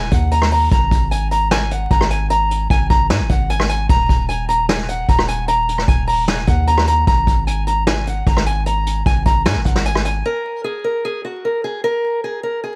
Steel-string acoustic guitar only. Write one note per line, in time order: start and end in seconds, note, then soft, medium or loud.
0.00 0.11 G#5 medium
0.11 0.31 F#5 medium
0.32 0.51 A#5 medium
0.52 0.71 A#5 medium
0.72 1.09 A#5 loud
1.11 1.30 G#5 medium
1.31 1.50 A#5 medium
1.51 1.70 G#5 medium
1.71 1.90 F#5 medium
1.91 2.10 A#5 medium
2.11 2.29 G#5 medium
2.30 2.68 A#5 loud
2.71 2.89 G#5 medium
2.90 3.09 A#5 medium
3.10 3.29 G#5 medium
3.29 3.48 F#5 medium
3.50 3.68 G#5 medium
3.69 3.88 G#5 medium
3.90 4.27 A#5 loud
4.29 4.48 G#5 medium
4.49 4.68 A#5 medium
4.69 4.88 G#5 medium
4.89 5.08 F#5 medium
5.09 5.28 A#5 medium
5.28 5.47 G#5 medium
5.48 5.86 A#5 loud
5.88 6.07 G#5 medium
6.08 6.27 A#5 medium
6.28 6.47 G#5 medium
6.47 6.66 F#5 medium
6.67 6.86 A#5 medium
6.88 7.06 A#5 medium
7.08 7.45 A#5 loud
7.47 7.66 G#5 medium
7.67 7.86 A#5 medium
7.87 8.06 G#5 medium
8.07 8.26 F#5 medium
8.27 8.46 A#5 medium
8.46 8.65 G#5 medium
8.66 9.04 A#5 loud
9.06 9.25 G#5 medium
9.26 9.45 A#5 medium
9.45 9.64 G#5 medium
9.65 9.84 F#5 medium
9.86 10.04 G#5 medium
10.05 10.24 G#5 medium
10.26 10.63 A#4 loud
10.64 10.83 G#4 medium
10.84 11.03 A#4 medium
11.05 11.24 G#4 medium
11.25 11.43 F#4 medium
11.45 11.63 A#4 medium
11.64 11.83 G#4 medium
11.84 12.21 A#4 loud
12.24 12.43 G#4 medium
12.43 12.62 A#4 medium
12.64 12.76 G#4 medium